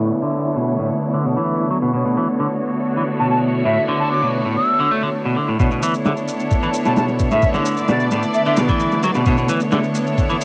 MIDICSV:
0, 0, Header, 1, 7, 480
1, 0, Start_track
1, 0, Key_signature, 2, "minor"
1, 0, Tempo, 458015
1, 112, Time_signature, 4, 2, 24, 8
1, 10944, End_track
2, 0, Start_track
2, 0, Title_t, "Flute"
2, 0, Program_c, 0, 73
2, 3348, Note_on_c, 0, 81, 83
2, 3427, Note_off_c, 0, 81, 0
2, 3459, Note_on_c, 0, 81, 70
2, 3543, Note_off_c, 0, 81, 0
2, 3823, Note_on_c, 0, 76, 84
2, 3997, Note_off_c, 0, 76, 0
2, 4188, Note_on_c, 0, 81, 88
2, 4287, Note_off_c, 0, 81, 0
2, 4309, Note_on_c, 0, 86, 83
2, 4479, Note_off_c, 0, 86, 0
2, 4784, Note_on_c, 0, 88, 83
2, 5148, Note_off_c, 0, 88, 0
2, 7187, Note_on_c, 0, 81, 83
2, 7266, Note_off_c, 0, 81, 0
2, 7307, Note_on_c, 0, 81, 71
2, 7387, Note_off_c, 0, 81, 0
2, 7670, Note_on_c, 0, 76, 88
2, 7840, Note_off_c, 0, 76, 0
2, 8267, Note_on_c, 0, 74, 90
2, 8439, Note_off_c, 0, 74, 0
2, 8743, Note_on_c, 0, 76, 85
2, 8825, Note_off_c, 0, 76, 0
2, 8871, Note_on_c, 0, 76, 70
2, 8948, Note_off_c, 0, 76, 0
2, 10944, End_track
3, 0, Start_track
3, 0, Title_t, "String section"
3, 0, Program_c, 1, 48
3, 0, Note_on_c, 1, 59, 78
3, 0, Note_on_c, 1, 62, 70
3, 0, Note_on_c, 1, 64, 70
3, 0, Note_on_c, 1, 69, 70
3, 0, Note_on_c, 1, 73, 81
3, 2003, Note_off_c, 1, 59, 0
3, 2003, Note_off_c, 1, 62, 0
3, 2003, Note_off_c, 1, 64, 0
3, 2003, Note_off_c, 1, 69, 0
3, 2003, Note_off_c, 1, 73, 0
3, 2025, Note_on_c, 1, 59, 78
3, 2025, Note_on_c, 1, 73, 87
3, 2026, Note_on_c, 1, 62, 72
3, 2026, Note_on_c, 1, 69, 71
3, 2027, Note_on_c, 1, 64, 69
3, 5840, Note_off_c, 1, 59, 0
3, 5840, Note_off_c, 1, 62, 0
3, 5840, Note_off_c, 1, 73, 0
3, 5841, Note_off_c, 1, 64, 0
3, 5841, Note_off_c, 1, 69, 0
3, 5865, Note_on_c, 1, 69, 67
3, 5866, Note_on_c, 1, 59, 75
3, 5866, Note_on_c, 1, 62, 68
3, 5867, Note_on_c, 1, 64, 68
3, 5867, Note_on_c, 1, 73, 79
3, 6071, Note_off_c, 1, 69, 0
3, 6072, Note_off_c, 1, 59, 0
3, 6072, Note_off_c, 1, 62, 0
3, 6072, Note_off_c, 1, 64, 0
3, 6072, Note_off_c, 1, 73, 0
3, 6225, Note_on_c, 1, 64, 77
3, 6227, Note_on_c, 1, 62, 75
3, 6228, Note_on_c, 1, 59, 80
3, 6228, Note_on_c, 1, 69, 76
3, 6228, Note_on_c, 1, 73, 89
3, 7760, Note_off_c, 1, 62, 0
3, 7760, Note_off_c, 1, 64, 0
3, 7761, Note_off_c, 1, 59, 0
3, 7761, Note_off_c, 1, 69, 0
3, 7761, Note_off_c, 1, 73, 0
3, 7787, Note_on_c, 1, 62, 78
3, 7787, Note_on_c, 1, 64, 81
3, 7788, Note_on_c, 1, 73, 95
3, 7789, Note_on_c, 1, 59, 89
3, 7790, Note_on_c, 1, 69, 80
3, 8121, Note_off_c, 1, 62, 0
3, 8122, Note_off_c, 1, 64, 0
3, 8122, Note_off_c, 1, 73, 0
3, 8123, Note_off_c, 1, 59, 0
3, 8123, Note_off_c, 1, 69, 0
3, 8146, Note_on_c, 1, 74, 111
3, 8147, Note_on_c, 1, 62, 92
3, 8147, Note_on_c, 1, 64, 90
3, 8147, Note_on_c, 1, 69, 92
3, 8149, Note_on_c, 1, 59, 102
3, 9680, Note_off_c, 1, 74, 0
3, 9681, Note_off_c, 1, 59, 0
3, 9681, Note_off_c, 1, 62, 0
3, 9681, Note_off_c, 1, 64, 0
3, 9681, Note_off_c, 1, 69, 0
3, 9708, Note_on_c, 1, 59, 76
3, 9708, Note_on_c, 1, 62, 68
3, 9709, Note_on_c, 1, 64, 68
3, 9709, Note_on_c, 1, 69, 71
3, 9709, Note_on_c, 1, 73, 83
3, 9913, Note_off_c, 1, 59, 0
3, 9913, Note_off_c, 1, 62, 0
3, 9913, Note_off_c, 1, 64, 0
3, 9913, Note_off_c, 1, 69, 0
3, 9913, Note_off_c, 1, 73, 0
3, 10070, Note_on_c, 1, 64, 76
3, 10070, Note_on_c, 1, 69, 78
3, 10071, Note_on_c, 1, 59, 86
3, 10071, Note_on_c, 1, 62, 78
3, 10072, Note_on_c, 1, 73, 93
3, 10944, Note_off_c, 1, 59, 0
3, 10944, Note_off_c, 1, 62, 0
3, 10944, Note_off_c, 1, 64, 0
3, 10944, Note_off_c, 1, 69, 0
3, 10944, Note_off_c, 1, 73, 0
3, 10944, End_track
4, 0, Start_track
4, 0, Title_t, "String section"
4, 0, Program_c, 2, 48
4, 0, Note_on_c, 2, 50, 74
4, 0, Note_on_c, 2, 57, 65
4, 0, Note_on_c, 2, 59, 68
4, 0, Note_on_c, 2, 64, 82
4, 0, Note_on_c, 2, 73, 68
4, 1997, Note_off_c, 2, 64, 0
4, 2029, Note_on_c, 2, 66, 83
4, 5832, Note_off_c, 2, 50, 0
4, 5832, Note_off_c, 2, 66, 0
4, 5832, Note_off_c, 2, 73, 0
4, 5833, Note_off_c, 2, 57, 0
4, 5834, Note_off_c, 2, 59, 0
4, 5865, Note_on_c, 2, 50, 78
4, 5867, Note_on_c, 2, 57, 72
4, 5868, Note_on_c, 2, 59, 70
4, 10944, Note_off_c, 2, 50, 0
4, 10944, Note_off_c, 2, 57, 0
4, 10944, Note_off_c, 2, 59, 0
4, 10944, End_track
5, 0, Start_track
5, 0, Title_t, "Clean electric guitar"
5, 0, Program_c, 3, 27
5, 0, Note_on_c, 3, 45, 94
5, 105, Note_off_c, 3, 45, 0
5, 233, Note_on_c, 3, 50, 93
5, 580, Note_off_c, 3, 50, 0
5, 588, Note_on_c, 3, 47, 74
5, 818, Note_off_c, 3, 47, 0
5, 831, Note_on_c, 3, 45, 68
5, 936, Note_off_c, 3, 45, 0
5, 1193, Note_on_c, 3, 50, 90
5, 1300, Note_off_c, 3, 50, 0
5, 1314, Note_on_c, 3, 47, 68
5, 1418, Note_off_c, 3, 47, 0
5, 1435, Note_on_c, 3, 52, 92
5, 1781, Note_off_c, 3, 52, 0
5, 1790, Note_on_c, 3, 54, 95
5, 1854, Note_off_c, 3, 54, 0
5, 1911, Note_on_c, 3, 47, 93
5, 2019, Note_off_c, 3, 47, 0
5, 2031, Note_on_c, 3, 47, 91
5, 2136, Note_off_c, 3, 47, 0
5, 2154, Note_on_c, 3, 47, 69
5, 2257, Note_off_c, 3, 47, 0
5, 2276, Note_on_c, 3, 52, 88
5, 2379, Note_off_c, 3, 52, 0
5, 2515, Note_on_c, 3, 50, 94
5, 2576, Note_off_c, 3, 50, 0
5, 3113, Note_on_c, 3, 52, 69
5, 3175, Note_off_c, 3, 52, 0
5, 3353, Note_on_c, 3, 47, 70
5, 3821, Note_off_c, 3, 47, 0
5, 3828, Note_on_c, 3, 45, 96
5, 3944, Note_off_c, 3, 45, 0
5, 4068, Note_on_c, 3, 50, 96
5, 4418, Note_off_c, 3, 50, 0
5, 4426, Note_on_c, 3, 47, 76
5, 4657, Note_off_c, 3, 47, 0
5, 4668, Note_on_c, 3, 45, 72
5, 4775, Note_off_c, 3, 45, 0
5, 5027, Note_on_c, 3, 50, 97
5, 5137, Note_off_c, 3, 50, 0
5, 5147, Note_on_c, 3, 57, 72
5, 5254, Note_off_c, 3, 57, 0
5, 5269, Note_on_c, 3, 50, 73
5, 5333, Note_off_c, 3, 50, 0
5, 5507, Note_on_c, 3, 47, 74
5, 5617, Note_off_c, 3, 47, 0
5, 5623, Note_on_c, 3, 50, 72
5, 5743, Note_off_c, 3, 50, 0
5, 5748, Note_on_c, 3, 45, 71
5, 5853, Note_off_c, 3, 45, 0
5, 5867, Note_on_c, 3, 47, 93
5, 5974, Note_off_c, 3, 47, 0
5, 5989, Note_on_c, 3, 47, 70
5, 6094, Note_off_c, 3, 47, 0
5, 6108, Note_on_c, 3, 52, 93
5, 6215, Note_off_c, 3, 52, 0
5, 6350, Note_on_c, 3, 50, 98
5, 6414, Note_off_c, 3, 50, 0
5, 6948, Note_on_c, 3, 52, 72
5, 7012, Note_off_c, 3, 52, 0
5, 7189, Note_on_c, 3, 47, 73
5, 7659, Note_off_c, 3, 47, 0
5, 7669, Note_on_c, 3, 45, 97
5, 7784, Note_off_c, 3, 45, 0
5, 7905, Note_on_c, 3, 50, 93
5, 8256, Note_off_c, 3, 50, 0
5, 8266, Note_on_c, 3, 47, 79
5, 8497, Note_off_c, 3, 47, 0
5, 8507, Note_on_c, 3, 45, 74
5, 8614, Note_off_c, 3, 45, 0
5, 8870, Note_on_c, 3, 50, 97
5, 8978, Note_off_c, 3, 50, 0
5, 8993, Note_on_c, 3, 47, 73
5, 9097, Note_off_c, 3, 47, 0
5, 9108, Note_on_c, 3, 52, 98
5, 9458, Note_off_c, 3, 52, 0
5, 9471, Note_on_c, 3, 54, 98
5, 9534, Note_off_c, 3, 54, 0
5, 9591, Note_on_c, 3, 47, 98
5, 9699, Note_off_c, 3, 47, 0
5, 9711, Note_on_c, 3, 47, 97
5, 9816, Note_off_c, 3, 47, 0
5, 9831, Note_on_c, 3, 47, 75
5, 9935, Note_off_c, 3, 47, 0
5, 9949, Note_on_c, 3, 52, 98
5, 10055, Note_off_c, 3, 52, 0
5, 10188, Note_on_c, 3, 50, 98
5, 10253, Note_off_c, 3, 50, 0
5, 10789, Note_on_c, 3, 52, 76
5, 10853, Note_off_c, 3, 52, 0
5, 10944, End_track
6, 0, Start_track
6, 0, Title_t, "Downlifter"
6, 0, Program_c, 4, 103
6, 0, Note_on_c, 4, 60, 64
6, 2032, Note_off_c, 4, 60, 0
6, 10944, End_track
7, 0, Start_track
7, 0, Title_t, "Drums"
7, 5866, Note_on_c, 9, 51, 85
7, 5866, Note_on_c, 9, 82, 41
7, 5867, Note_on_c, 9, 36, 105
7, 5971, Note_off_c, 9, 51, 0
7, 5971, Note_off_c, 9, 82, 0
7, 5972, Note_off_c, 9, 36, 0
7, 5986, Note_on_c, 9, 82, 20
7, 6091, Note_off_c, 9, 82, 0
7, 6105, Note_on_c, 9, 82, 71
7, 6107, Note_on_c, 9, 51, 68
7, 6210, Note_off_c, 9, 82, 0
7, 6212, Note_off_c, 9, 51, 0
7, 6226, Note_on_c, 9, 82, 30
7, 6331, Note_off_c, 9, 82, 0
7, 6344, Note_on_c, 9, 82, 42
7, 6346, Note_on_c, 9, 38, 112
7, 6346, Note_on_c, 9, 51, 84
7, 6449, Note_off_c, 9, 82, 0
7, 6451, Note_off_c, 9, 38, 0
7, 6451, Note_off_c, 9, 51, 0
7, 6465, Note_on_c, 9, 82, 21
7, 6569, Note_off_c, 9, 82, 0
7, 6581, Note_on_c, 9, 82, 71
7, 6587, Note_on_c, 9, 51, 63
7, 6686, Note_off_c, 9, 82, 0
7, 6692, Note_off_c, 9, 51, 0
7, 6703, Note_on_c, 9, 82, 32
7, 6808, Note_off_c, 9, 82, 0
7, 6822, Note_on_c, 9, 82, 40
7, 6827, Note_on_c, 9, 36, 99
7, 6827, Note_on_c, 9, 51, 79
7, 6927, Note_off_c, 9, 82, 0
7, 6932, Note_off_c, 9, 36, 0
7, 6932, Note_off_c, 9, 51, 0
7, 6945, Note_on_c, 9, 82, 20
7, 7049, Note_off_c, 9, 82, 0
7, 7061, Note_on_c, 9, 82, 74
7, 7065, Note_on_c, 9, 51, 65
7, 7166, Note_off_c, 9, 82, 0
7, 7170, Note_off_c, 9, 51, 0
7, 7182, Note_on_c, 9, 82, 30
7, 7184, Note_on_c, 9, 38, 54
7, 7287, Note_off_c, 9, 82, 0
7, 7289, Note_off_c, 9, 38, 0
7, 7302, Note_on_c, 9, 82, 42
7, 7305, Note_on_c, 9, 38, 112
7, 7305, Note_on_c, 9, 51, 84
7, 7407, Note_off_c, 9, 82, 0
7, 7410, Note_off_c, 9, 38, 0
7, 7410, Note_off_c, 9, 51, 0
7, 7422, Note_on_c, 9, 82, 20
7, 7427, Note_on_c, 9, 38, 43
7, 7527, Note_off_c, 9, 82, 0
7, 7531, Note_off_c, 9, 38, 0
7, 7540, Note_on_c, 9, 82, 75
7, 7545, Note_on_c, 9, 51, 65
7, 7546, Note_on_c, 9, 36, 91
7, 7644, Note_off_c, 9, 82, 0
7, 7650, Note_off_c, 9, 51, 0
7, 7651, Note_off_c, 9, 36, 0
7, 7663, Note_on_c, 9, 82, 31
7, 7668, Note_on_c, 9, 38, 36
7, 7767, Note_off_c, 9, 82, 0
7, 7772, Note_off_c, 9, 38, 0
7, 7779, Note_on_c, 9, 82, 41
7, 7786, Note_on_c, 9, 36, 104
7, 7787, Note_on_c, 9, 51, 82
7, 7884, Note_off_c, 9, 82, 0
7, 7891, Note_off_c, 9, 36, 0
7, 7892, Note_off_c, 9, 51, 0
7, 7903, Note_on_c, 9, 82, 21
7, 7907, Note_on_c, 9, 38, 41
7, 8008, Note_off_c, 9, 82, 0
7, 8012, Note_off_c, 9, 38, 0
7, 8021, Note_on_c, 9, 82, 73
7, 8027, Note_on_c, 9, 46, 79
7, 8126, Note_off_c, 9, 82, 0
7, 8132, Note_off_c, 9, 46, 0
7, 8143, Note_on_c, 9, 82, 31
7, 8248, Note_off_c, 9, 82, 0
7, 8260, Note_on_c, 9, 82, 43
7, 8263, Note_on_c, 9, 38, 114
7, 8263, Note_on_c, 9, 51, 84
7, 8365, Note_off_c, 9, 82, 0
7, 8368, Note_off_c, 9, 38, 0
7, 8368, Note_off_c, 9, 51, 0
7, 8382, Note_on_c, 9, 82, 21
7, 8487, Note_off_c, 9, 82, 0
7, 8498, Note_on_c, 9, 82, 72
7, 8505, Note_on_c, 9, 38, 48
7, 8505, Note_on_c, 9, 51, 66
7, 8603, Note_off_c, 9, 82, 0
7, 8610, Note_off_c, 9, 38, 0
7, 8610, Note_off_c, 9, 51, 0
7, 8621, Note_on_c, 9, 82, 32
7, 8726, Note_off_c, 9, 82, 0
7, 8740, Note_on_c, 9, 82, 41
7, 8844, Note_off_c, 9, 82, 0
7, 8860, Note_on_c, 9, 82, 21
7, 8965, Note_off_c, 9, 82, 0
7, 8978, Note_on_c, 9, 82, 75
7, 8987, Note_on_c, 9, 38, 114
7, 8987, Note_on_c, 9, 51, 67
7, 9083, Note_off_c, 9, 82, 0
7, 9092, Note_off_c, 9, 38, 0
7, 9092, Note_off_c, 9, 51, 0
7, 9102, Note_on_c, 9, 82, 32
7, 9107, Note_on_c, 9, 36, 90
7, 9207, Note_off_c, 9, 82, 0
7, 9211, Note_off_c, 9, 36, 0
7, 9220, Note_on_c, 9, 82, 42
7, 9225, Note_on_c, 9, 51, 87
7, 9324, Note_off_c, 9, 82, 0
7, 9330, Note_off_c, 9, 51, 0
7, 9343, Note_on_c, 9, 82, 21
7, 9347, Note_on_c, 9, 38, 44
7, 9448, Note_off_c, 9, 82, 0
7, 9452, Note_off_c, 9, 38, 0
7, 9462, Note_on_c, 9, 82, 74
7, 9466, Note_on_c, 9, 38, 53
7, 9466, Note_on_c, 9, 51, 64
7, 9566, Note_off_c, 9, 82, 0
7, 9571, Note_off_c, 9, 38, 0
7, 9571, Note_off_c, 9, 51, 0
7, 9583, Note_on_c, 9, 82, 33
7, 9588, Note_on_c, 9, 38, 38
7, 9688, Note_off_c, 9, 82, 0
7, 9693, Note_off_c, 9, 38, 0
7, 9700, Note_on_c, 9, 82, 39
7, 9706, Note_on_c, 9, 51, 83
7, 9707, Note_on_c, 9, 36, 104
7, 9805, Note_off_c, 9, 82, 0
7, 9811, Note_off_c, 9, 51, 0
7, 9812, Note_off_c, 9, 36, 0
7, 9826, Note_on_c, 9, 82, 21
7, 9930, Note_off_c, 9, 82, 0
7, 9942, Note_on_c, 9, 82, 72
7, 9949, Note_on_c, 9, 51, 68
7, 10047, Note_off_c, 9, 82, 0
7, 10054, Note_off_c, 9, 51, 0
7, 10064, Note_on_c, 9, 82, 31
7, 10168, Note_off_c, 9, 82, 0
7, 10184, Note_on_c, 9, 82, 42
7, 10188, Note_on_c, 9, 38, 112
7, 10188, Note_on_c, 9, 51, 86
7, 10288, Note_off_c, 9, 82, 0
7, 10293, Note_off_c, 9, 38, 0
7, 10293, Note_off_c, 9, 51, 0
7, 10308, Note_on_c, 9, 82, 21
7, 10413, Note_off_c, 9, 82, 0
7, 10425, Note_on_c, 9, 82, 70
7, 10429, Note_on_c, 9, 51, 69
7, 10529, Note_off_c, 9, 82, 0
7, 10534, Note_off_c, 9, 51, 0
7, 10548, Note_on_c, 9, 82, 33
7, 10653, Note_off_c, 9, 82, 0
7, 10667, Note_on_c, 9, 51, 80
7, 10667, Note_on_c, 9, 82, 41
7, 10669, Note_on_c, 9, 36, 103
7, 10772, Note_off_c, 9, 51, 0
7, 10772, Note_off_c, 9, 82, 0
7, 10773, Note_off_c, 9, 36, 0
7, 10789, Note_on_c, 9, 82, 21
7, 10894, Note_off_c, 9, 82, 0
7, 10910, Note_on_c, 9, 82, 71
7, 10912, Note_on_c, 9, 51, 64
7, 10944, Note_off_c, 9, 51, 0
7, 10944, Note_off_c, 9, 82, 0
7, 10944, End_track
0, 0, End_of_file